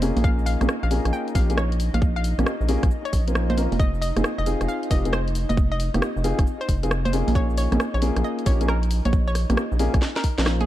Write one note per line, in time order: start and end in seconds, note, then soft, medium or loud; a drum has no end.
0.00 0.12 F1 loud
0.00 0.57 A#3 loud
0.00 0.57 C#4 medium
0.00 10.66 D#4 medium
0.00 0.57 F4 medium
0.00 0.57 G#4 loud
0.00 10.66 D#5 medium
0.00 open hi-hat loud
0.00 cabasa medium
0.16 0.56 A#1 loud
0.16 open hi-hat medium
0.16 high conga medium
0.16 cabasa soft
0.24 0.36 F5 loud
0.24 kick loud
0.24 cabasa soft
0.39 cabasa soft
0.46 0.62 F5 loud
0.46 open hi-hat loud
0.46 cabasa medium
0.61 0.67 A#1 loud
0.61 0.69 A#3 medium
0.61 0.69 C#4 medium
0.61 0.69 F4 medium
0.61 0.69 G#4 medium
0.61 cross-stick medium
0.61 closed hi-hat medium
0.61 high conga medium
0.61 cabasa soft
0.69 cross-stick loud
0.69 cabasa soft
0.83 1.00 A#1 medium
0.83 0.94 F5 medium
0.83 cabasa soft
0.91 1.33 A#3 medium
0.91 1.33 C#4 medium
0.91 1.33 F4 medium
0.91 1.33 G#4 loud
0.91 open hi-hat loud
0.91 cabasa medium
1.05 1.11 A#1 medium
1.05 cross-stick medium
1.05 closed hi-hat medium
1.05 cabasa soft
1.13 1.25 G5 medium
1.13 cabasa soft
1.28 closed hi-hat soft
1.28 cabasa soft
1.35 1.90 A#1 loud
1.35 1.48 A#3 medium
1.35 1.48 C#4 medium
1.35 1.48 F4 medium
1.35 1.48 G4 loud
1.35 1.47 F5 medium
1.35 kick loud
1.35 open hi-hat loud
1.35 cabasa medium
1.50 1.58 A#3 medium
1.50 1.58 C#4 medium
1.50 1.58 F4 medium
1.50 1.58 G#4 loud
1.50 closed hi-hat medium
1.50 cabasa soft
1.58 1.74 C#5 medium
1.58 cross-stick loud
1.58 cabasa soft
1.72 closed hi-hat medium
1.72 cabasa soft
1.80 open hi-hat loud
1.80 cabasa medium
1.94 2.34 A#1 medium
1.94 2.00 F5 medium
1.94 closed hi-hat medium
1.94 high conga medium
1.94 cabasa soft
2.02 kick loud
2.02 cabasa soft
2.16 2.33 F5 loud
2.16 cabasa soft
2.24 open hi-hat loud
2.24 cabasa medium
2.38 2.45 A#1 medium
2.38 2.47 A#3 medium
2.38 2.47 C#4 medium
2.38 2.47 F4 medium
2.38 2.47 G4 medium
2.38 cross-stick medium
2.38 closed hi-hat medium
2.38 high conga medium
2.38 cabasa soft
2.46 cross-stick loud
2.46 cabasa soft
2.61 2.77 A#1 medium
2.61 cabasa soft
2.69 2.83 A#3 loud
2.69 2.83 C#4 medium
2.69 2.83 F4 medium
2.69 2.83 G#4 loud
2.69 open hi-hat loud
2.69 cabasa medium
2.83 2.89 A#1 medium
2.83 kick loud
2.83 cross-stick medium
2.83 closed hi-hat medium
2.83 cabasa soft
2.91 cabasa soft
3.05 3.22 C#5 medium
3.05 closed hi-hat soft
3.05 cabasa soft
3.13 3.67 A#1 medium
3.13 kick medium
3.13 open hi-hat loud
3.13 cabasa medium
3.27 3.56 A#3 medium
3.27 3.56 C#4 medium
3.27 3.56 F4 medium
3.27 3.56 C5 medium
3.27 closed hi-hat medium
3.27 cabasa soft
3.35 cross-stick loud
3.35 cabasa soft
3.50 3.60 C5 medium
3.50 closed hi-hat medium
3.50 high conga medium
3.50 cabasa soft
3.57 3.72 A#3 medium
3.57 3.72 C#4 medium
3.57 3.72 F4 medium
3.57 3.72 A#4 medium
3.57 open hi-hat loud
3.57 cabasa medium
3.72 4.12 F1 loud
3.72 open hi-hat medium
3.72 high conga medium
3.72 cabasa soft
3.80 3.91 D#5 loud
3.80 kick loud
3.80 cabasa soft
3.94 cabasa soft
4.02 4.18 D#5 medium
4.02 open hi-hat loud
4.02 cabasa medium
4.16 4.23 F1 loud
4.16 4.24 C4 medium
4.16 4.24 D#4 medium
4.16 4.24 F4 medium
4.16 4.24 G#4 medium
4.16 cross-stick medium
4.16 closed hi-hat medium
4.16 high conga medium
4.16 cabasa soft
4.24 cross-stick loud
4.24 cabasa soft
4.38 4.55 F1 medium
4.38 4.49 D#5 medium
4.38 cabasa soft
4.46 4.89 C4 medium
4.46 4.89 D#4 medium
4.46 4.89 F4 medium
4.46 4.89 G#4 loud
4.46 open hi-hat loud
4.46 cabasa medium
4.61 4.67 F1 medium
4.61 cross-stick medium
4.61 closed hi-hat medium
4.61 cabasa soft
4.68 4.80 F5 medium
4.68 cabasa soft
4.83 closed hi-hat soft
4.83 cabasa soft
4.91 5.45 F1 loud
4.91 5.03 C4 medium
4.91 5.03 D#4 medium
4.91 5.03 F4 medium
4.91 5.03 G4 loud
4.91 5.02 D#5 medium
4.91 kick loud
4.91 open hi-hat loud
4.91 cabasa medium
5.05 5.13 C4 medium
5.05 5.13 D#4 medium
5.05 5.13 F4 medium
5.05 5.13 G#4 loud
5.05 closed hi-hat medium
5.05 cabasa soft
5.13 5.29 C5 loud
5.13 cross-stick loud
5.13 cabasa soft
5.28 closed hi-hat medium
5.28 cabasa soft
5.35 open hi-hat loud
5.35 cabasa medium
5.49 5.90 F1 loud
5.49 5.56 D#5 medium
5.49 closed hi-hat medium
5.49 high conga medium
5.49 cabasa soft
5.57 kick loud
5.57 cabasa soft
5.72 5.88 D#5 loud
5.72 cabasa soft
5.80 open hi-hat loud
5.80 cabasa medium
5.94 6.00 F1 loud
5.94 6.02 C4 medium
5.94 6.02 D#4 medium
5.94 6.02 F4 medium
5.94 6.02 G4 medium
5.94 cross-stick medium
5.94 closed hi-hat medium
5.94 high conga medium
5.94 cabasa soft
6.02 cross-stick loud
6.02 cabasa soft
6.16 6.33 F1 medium
6.16 cabasa soft
6.24 6.39 C4 loud
6.24 6.39 D#4 loud
6.24 6.39 F4 loud
6.24 6.39 G#4 loud
6.24 open hi-hat loud
6.24 cabasa medium
6.39 6.45 F1 medium
6.39 kick loud
6.39 cross-stick medium
6.39 closed hi-hat medium
6.39 cabasa soft
6.47 cabasa soft
6.61 6.77 C5 loud
6.61 closed hi-hat soft
6.61 cabasa soft
6.69 7.23 F1 loud
6.69 kick medium
6.69 open hi-hat loud
6.69 cabasa medium
6.83 6.88 C4 medium
6.83 6.88 D#4 medium
6.83 6.88 F4 medium
6.83 6.88 G#4 loud
6.83 closed hi-hat medium
6.83 cabasa soft
6.91 cross-stick loud
6.91 cabasa soft
7.05 7.16 C5 loud
7.05 closed hi-hat medium
7.05 high conga medium
7.05 cabasa soft
7.13 7.69 A#3 medium
7.13 7.69 C#4 medium
7.13 7.69 F4 medium
7.13 7.69 G#4 loud
7.13 open hi-hat loud
7.13 cabasa medium
7.28 7.68 A#1 loud
7.28 open hi-hat medium
7.28 high conga medium
7.28 cabasa soft
7.35 7.47 C#5 loud
7.35 kick loud
7.35 cabasa soft
7.50 cabasa soft
7.58 7.74 C#5 loud
7.58 open hi-hat loud
7.58 cabasa medium
7.72 7.78 A#1 loud
7.72 7.80 A#3 medium
7.72 7.80 C#4 medium
7.72 7.80 F4 medium
7.72 7.80 G#4 medium
7.72 cross-stick medium
7.72 closed hi-hat medium
7.72 high conga medium
7.72 cabasa soft
7.80 cross-stick loud
7.80 cabasa soft
7.94 8.11 A#1 medium
7.94 8.05 C#5 loud
7.94 cabasa soft
8.02 8.45 A#3 loud
8.02 8.45 C#4 medium
8.02 8.45 F4 medium
8.02 8.45 G#4 loud
8.02 open hi-hat loud
8.02 cabasa medium
8.16 8.23 A#1 medium
8.16 cross-stick medium
8.16 closed hi-hat medium
8.16 cabasa soft
8.24 8.36 D#5 medium
8.24 cabasa soft
8.39 closed hi-hat soft
8.39 cabasa soft
8.46 9.01 A#1 loud
8.46 8.59 A#3 medium
8.46 8.59 C#4 medium
8.46 8.59 F4 medium
8.46 8.59 G4 loud
8.46 8.58 C#5 medium
8.46 kick loud
8.46 open hi-hat loud
8.46 cabasa medium
8.61 8.69 A#3 loud
8.61 8.69 C#4 medium
8.61 8.69 F4 medium
8.61 8.69 G#4 loud
8.61 closed hi-hat medium
8.61 cabasa soft
8.68 8.85 A#4 loud
8.68 cross-stick loud
8.68 cabasa soft
8.83 closed hi-hat medium
8.83 cabasa soft
8.91 open hi-hat loud
8.91 cabasa medium
9.05 9.45 A#1 loud
9.05 9.12 C#5 medium
9.05 closed hi-hat medium
9.05 high conga medium
9.05 cabasa soft
9.13 kick loud
9.13 cabasa soft
9.27 9.44 C#5 loud
9.27 cabasa soft
9.35 cross-stick medium
9.35 open hi-hat loud
9.35 cabasa medium
9.50 9.56 A#1 loud
9.50 9.58 A#3 medium
9.50 9.58 C#4 medium
9.50 9.58 F4 medium
9.50 9.58 G4 medium
9.50 cross-stick medium
9.50 closed hi-hat medium
9.50 high conga medium
9.50 cabasa soft
9.57 cross-stick loud
9.57 cabasa soft
9.72 9.89 A#1 medium
9.72 cabasa soft
9.79 9.94 A#3 loud
9.79 9.94 C#4 loud
9.79 9.94 F4 medium
9.79 9.94 G#4 loud
9.79 open hi-hat loud
9.79 cabasa medium
9.94 10.00 A#1 medium
9.94 kick loud
9.94 cross-stick medium
9.94 closed hi-hat medium
9.94 cabasa soft
10.02 snare medium
10.02 cabasa soft
10.16 10.33 A#4 loud
10.16 snare medium
10.16 closed hi-hat soft
10.16 cabasa soft
10.24 kick medium
10.24 open hi-hat loud
10.24 cabasa medium
10.38 10.66 A#1 medium
10.38 10.66 A#3 medium
10.38 10.66 C#4 medium
10.38 10.66 F4 medium
10.38 10.66 C5 medium
10.38 snare medium
10.38 closed hi-hat medium
10.38 cabasa soft
10.46 cross-stick loud
10.46 snare medium
10.46 cabasa soft
10.61 10.66 G#4 loud
10.61 closed hi-hat medium
10.61 high conga medium
10.61 cabasa soft